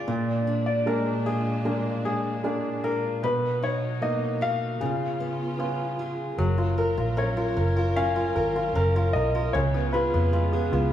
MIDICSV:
0, 0, Header, 1, 6, 480
1, 0, Start_track
1, 0, Key_signature, 6, "major"
1, 0, Tempo, 789474
1, 44, Time_signature, 4, 2, 24, 8
1, 6644, End_track
2, 0, Start_track
2, 0, Title_t, "Grand piano"
2, 0, Program_c, 0, 0
2, 0, Note_on_c, 0, 74, 71
2, 379, Note_off_c, 0, 74, 0
2, 402, Note_on_c, 0, 74, 71
2, 515, Note_off_c, 0, 74, 0
2, 528, Note_on_c, 0, 70, 68
2, 766, Note_on_c, 0, 68, 73
2, 773, Note_off_c, 0, 70, 0
2, 1238, Note_off_c, 0, 68, 0
2, 1247, Note_on_c, 0, 68, 82
2, 1727, Note_on_c, 0, 70, 69
2, 1740, Note_off_c, 0, 68, 0
2, 1968, Note_on_c, 0, 71, 81
2, 1973, Note_off_c, 0, 70, 0
2, 2210, Note_on_c, 0, 73, 74
2, 2213, Note_off_c, 0, 71, 0
2, 2446, Note_on_c, 0, 75, 75
2, 2454, Note_off_c, 0, 73, 0
2, 2669, Note_off_c, 0, 75, 0
2, 2688, Note_on_c, 0, 77, 95
2, 3622, Note_off_c, 0, 77, 0
2, 4367, Note_on_c, 0, 73, 77
2, 4842, Note_on_c, 0, 77, 86
2, 4860, Note_off_c, 0, 73, 0
2, 5539, Note_off_c, 0, 77, 0
2, 5553, Note_on_c, 0, 75, 80
2, 5781, Note_off_c, 0, 75, 0
2, 5795, Note_on_c, 0, 73, 83
2, 6023, Note_off_c, 0, 73, 0
2, 6035, Note_on_c, 0, 71, 77
2, 6644, Note_off_c, 0, 71, 0
2, 6644, End_track
3, 0, Start_track
3, 0, Title_t, "Steel-string acoustic guitar"
3, 0, Program_c, 1, 25
3, 0, Note_on_c, 1, 59, 50
3, 0, Note_on_c, 1, 65, 43
3, 0, Note_on_c, 1, 68, 55
3, 46, Note_on_c, 1, 46, 62
3, 92, Note_off_c, 1, 59, 0
3, 93, Note_off_c, 1, 65, 0
3, 287, Note_on_c, 1, 62, 49
3, 305, Note_off_c, 1, 68, 0
3, 528, Note_on_c, 1, 56, 47
3, 767, Note_on_c, 1, 65, 57
3, 997, Note_off_c, 1, 62, 0
3, 1004, Note_on_c, 1, 62, 50
3, 1242, Note_off_c, 1, 56, 0
3, 1249, Note_on_c, 1, 56, 50
3, 1477, Note_off_c, 1, 62, 0
3, 1485, Note_on_c, 1, 62, 49
3, 1718, Note_off_c, 1, 65, 0
3, 1725, Note_on_c, 1, 65, 58
3, 1964, Note_off_c, 1, 46, 0
3, 1966, Note_on_c, 1, 47, 63
3, 2012, Note_off_c, 1, 62, 0
3, 2013, Note_off_c, 1, 65, 0
3, 2015, Note_off_c, 1, 56, 0
3, 2204, Note_on_c, 1, 63, 51
3, 2443, Note_on_c, 1, 58, 50
3, 2682, Note_on_c, 1, 66, 54
3, 2922, Note_off_c, 1, 47, 0
3, 2924, Note_on_c, 1, 49, 67
3, 2971, Note_off_c, 1, 66, 0
3, 2972, Note_off_c, 1, 58, 0
3, 2972, Note_off_c, 1, 63, 0
3, 3163, Note_on_c, 1, 59, 51
3, 3402, Note_on_c, 1, 65, 49
3, 3643, Note_on_c, 1, 68, 50
3, 3882, Note_on_c, 1, 54, 72
3, 3931, Note_off_c, 1, 68, 0
3, 3932, Note_off_c, 1, 49, 0
3, 3932, Note_off_c, 1, 59, 0
3, 3997, Note_off_c, 1, 65, 0
3, 4000, Note_on_c, 1, 65, 44
3, 4121, Note_on_c, 1, 70, 57
3, 4238, Note_off_c, 1, 65, 0
3, 4241, Note_on_c, 1, 65, 47
3, 4359, Note_on_c, 1, 61, 58
3, 4473, Note_off_c, 1, 70, 0
3, 4480, Note_on_c, 1, 70, 53
3, 4598, Note_off_c, 1, 61, 0
3, 4600, Note_on_c, 1, 61, 50
3, 4713, Note_off_c, 1, 70, 0
3, 4721, Note_on_c, 1, 70, 52
3, 4836, Note_off_c, 1, 54, 0
3, 4843, Note_on_c, 1, 54, 69
3, 4958, Note_off_c, 1, 65, 0
3, 4961, Note_on_c, 1, 65, 50
3, 5074, Note_off_c, 1, 70, 0
3, 5081, Note_on_c, 1, 70, 58
3, 5201, Note_off_c, 1, 65, 0
3, 5204, Note_on_c, 1, 65, 51
3, 5320, Note_off_c, 1, 61, 0
3, 5322, Note_on_c, 1, 61, 60
3, 5440, Note_off_c, 1, 70, 0
3, 5447, Note_on_c, 1, 70, 58
3, 5565, Note_off_c, 1, 61, 0
3, 5568, Note_on_c, 1, 61, 51
3, 5676, Note_off_c, 1, 70, 0
3, 5684, Note_on_c, 1, 70, 60
3, 5803, Note_on_c, 1, 49, 69
3, 5852, Note_off_c, 1, 54, 0
3, 5852, Note_off_c, 1, 70, 0
3, 5921, Note_off_c, 1, 65, 0
3, 5924, Note_on_c, 1, 65, 51
3, 6043, Note_on_c, 1, 68, 56
3, 6163, Note_off_c, 1, 65, 0
3, 6165, Note_on_c, 1, 65, 52
3, 6281, Note_on_c, 1, 56, 59
3, 6401, Note_off_c, 1, 68, 0
3, 6403, Note_on_c, 1, 68, 59
3, 6520, Note_off_c, 1, 61, 0
3, 6523, Note_on_c, 1, 59, 58
3, 6641, Note_off_c, 1, 68, 0
3, 6644, Note_off_c, 1, 49, 0
3, 6644, Note_off_c, 1, 56, 0
3, 6644, Note_off_c, 1, 59, 0
3, 6644, Note_off_c, 1, 65, 0
3, 6644, End_track
4, 0, Start_track
4, 0, Title_t, "Grand piano"
4, 0, Program_c, 2, 0
4, 0, Control_c, 2, 64, 127
4, 46, Note_on_c, 2, 46, 55
4, 53, Control_c, 2, 64, 0
4, 164, Control_c, 2, 64, 127
4, 523, Note_on_c, 2, 56, 39
4, 526, Note_on_c, 2, 58, 37
4, 528, Note_on_c, 2, 62, 47
4, 989, Note_off_c, 2, 56, 0
4, 991, Note_off_c, 2, 58, 0
4, 992, Note_off_c, 2, 62, 0
4, 1003, Note_on_c, 2, 56, 44
4, 1004, Note_on_c, 2, 58, 40
4, 1008, Note_on_c, 2, 62, 44
4, 1469, Note_off_c, 2, 56, 0
4, 1470, Note_off_c, 2, 58, 0
4, 1472, Note_off_c, 2, 62, 0
4, 1482, Note_on_c, 2, 56, 45
4, 1484, Note_on_c, 2, 58, 41
4, 1486, Note_on_c, 2, 62, 49
4, 1941, Note_off_c, 2, 46, 0
4, 1949, Note_off_c, 2, 56, 0
4, 1950, Note_off_c, 2, 58, 0
4, 1951, Note_off_c, 2, 62, 0
4, 1962, Note_on_c, 2, 47, 54
4, 1971, Control_c, 2, 64, 0
4, 2083, Control_c, 2, 64, 127
4, 2441, Note_on_c, 2, 58, 40
4, 2444, Note_on_c, 2, 59, 36
4, 2446, Note_on_c, 2, 63, 45
4, 2899, Note_off_c, 2, 47, 0
4, 2908, Note_off_c, 2, 58, 0
4, 2910, Note_off_c, 2, 59, 0
4, 2911, Note_off_c, 2, 63, 0
4, 2923, Note_on_c, 2, 49, 58
4, 2932, Control_c, 2, 64, 0
4, 3055, Control_c, 2, 64, 127
4, 3398, Note_on_c, 2, 59, 42
4, 3401, Note_on_c, 2, 61, 38
4, 3405, Note_on_c, 2, 65, 47
4, 3859, Note_off_c, 2, 49, 0
4, 3867, Note_off_c, 2, 59, 0
4, 3868, Note_off_c, 2, 61, 0
4, 3870, Note_off_c, 2, 65, 0
4, 3882, Note_on_c, 2, 54, 55
4, 3893, Control_c, 2, 64, 0
4, 4002, Note_on_c, 2, 65, 45
4, 4015, Control_c, 2, 64, 127
4, 4124, Note_on_c, 2, 70, 51
4, 4233, Note_off_c, 2, 65, 0
4, 4243, Note_on_c, 2, 65, 48
4, 4351, Note_off_c, 2, 70, 0
4, 4360, Note_on_c, 2, 70, 45
4, 4473, Note_off_c, 2, 65, 0
4, 4482, Note_on_c, 2, 65, 50
4, 4591, Note_off_c, 2, 70, 0
4, 4600, Note_on_c, 2, 70, 45
4, 4713, Note_off_c, 2, 65, 0
4, 4722, Note_on_c, 2, 65, 46
4, 4843, Note_on_c, 2, 61, 59
4, 4953, Note_off_c, 2, 65, 0
4, 4962, Note_on_c, 2, 65, 45
4, 5070, Note_off_c, 2, 70, 0
4, 5079, Note_on_c, 2, 70, 50
4, 5194, Note_off_c, 2, 65, 0
4, 5203, Note_on_c, 2, 65, 48
4, 5316, Note_off_c, 2, 70, 0
4, 5325, Note_on_c, 2, 70, 54
4, 5437, Note_off_c, 2, 65, 0
4, 5446, Note_on_c, 2, 65, 49
4, 5560, Note_off_c, 2, 70, 0
4, 5569, Note_on_c, 2, 70, 50
4, 5678, Note_off_c, 2, 65, 0
4, 5688, Note_on_c, 2, 65, 44
4, 5779, Note_off_c, 2, 54, 0
4, 5779, Note_off_c, 2, 61, 0
4, 5800, Note_off_c, 2, 70, 0
4, 5802, Note_off_c, 2, 65, 0
4, 5807, Note_on_c, 2, 49, 61
4, 5814, Control_c, 2, 64, 0
4, 5922, Control_c, 2, 64, 127
4, 5924, Note_on_c, 2, 59, 48
4, 6046, Note_on_c, 2, 65, 51
4, 6156, Note_off_c, 2, 59, 0
4, 6165, Note_on_c, 2, 59, 47
4, 6272, Note_off_c, 2, 65, 0
4, 6281, Note_on_c, 2, 65, 53
4, 6390, Note_off_c, 2, 59, 0
4, 6399, Note_on_c, 2, 59, 50
4, 6511, Note_off_c, 2, 65, 0
4, 6520, Note_on_c, 2, 65, 49
4, 6632, Note_off_c, 2, 59, 0
4, 6644, Note_off_c, 2, 49, 0
4, 6644, Note_off_c, 2, 65, 0
4, 6644, End_track
5, 0, Start_track
5, 0, Title_t, "String section"
5, 0, Program_c, 3, 48
5, 37, Note_on_c, 3, 62, 70
5, 39, Note_on_c, 3, 56, 61
5, 40, Note_on_c, 3, 46, 62
5, 1941, Note_off_c, 3, 62, 0
5, 1942, Note_off_c, 3, 56, 0
5, 1943, Note_off_c, 3, 46, 0
5, 1962, Note_on_c, 3, 47, 64
5, 1965, Note_on_c, 3, 63, 65
5, 1966, Note_on_c, 3, 54, 56
5, 2914, Note_off_c, 3, 47, 0
5, 2915, Note_off_c, 3, 54, 0
5, 2915, Note_off_c, 3, 63, 0
5, 2915, Note_on_c, 3, 65, 73
5, 2916, Note_on_c, 3, 59, 56
5, 2917, Note_on_c, 3, 49, 62
5, 3870, Note_off_c, 3, 65, 0
5, 3871, Note_off_c, 3, 49, 0
5, 3871, Note_off_c, 3, 59, 0
5, 3879, Note_on_c, 3, 54, 58
5, 3882, Note_on_c, 3, 65, 54
5, 3882, Note_on_c, 3, 70, 70
5, 5783, Note_off_c, 3, 54, 0
5, 5784, Note_off_c, 3, 70, 0
5, 5802, Note_on_c, 3, 49, 64
5, 5803, Note_on_c, 3, 59, 60
5, 6644, Note_off_c, 3, 49, 0
5, 6644, Note_off_c, 3, 59, 0
5, 6644, Note_off_c, 3, 65, 0
5, 6644, End_track
6, 0, Start_track
6, 0, Title_t, "Fingered electric bass"
6, 0, Program_c, 4, 33
6, 3881, Note_on_c, 4, 30, 86
6, 4218, Note_off_c, 4, 30, 0
6, 4244, Note_on_c, 4, 34, 69
6, 4580, Note_off_c, 4, 34, 0
6, 4603, Note_on_c, 4, 30, 79
6, 5059, Note_off_c, 4, 30, 0
6, 5086, Note_on_c, 4, 32, 71
6, 5308, Note_off_c, 4, 32, 0
6, 5324, Note_on_c, 4, 30, 78
6, 5547, Note_off_c, 4, 30, 0
6, 5561, Note_on_c, 4, 35, 84
6, 5786, Note_off_c, 4, 35, 0
6, 5804, Note_on_c, 4, 37, 88
6, 6140, Note_off_c, 4, 37, 0
6, 6166, Note_on_c, 4, 41, 71
6, 6501, Note_off_c, 4, 41, 0
6, 6522, Note_on_c, 4, 37, 90
6, 6644, Note_off_c, 4, 37, 0
6, 6644, End_track
0, 0, End_of_file